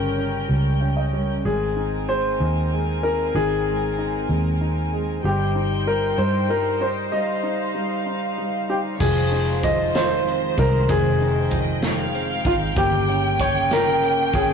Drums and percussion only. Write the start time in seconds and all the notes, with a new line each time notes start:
9.00 kick, crash
9.32 closed hi-hat
9.63 kick, closed hi-hat
9.95 snare, closed hi-hat
10.27 closed hi-hat
10.58 kick, closed hi-hat
10.89 kick, closed hi-hat
11.21 closed hi-hat
11.51 kick, closed hi-hat
11.82 snare, closed hi-hat
12.15 closed hi-hat
12.45 kick, closed hi-hat
12.76 kick, closed hi-hat
13.08 closed hi-hat
13.39 kick, closed hi-hat
13.71 snare, closed hi-hat
14.03 closed hi-hat
14.33 kick, closed hi-hat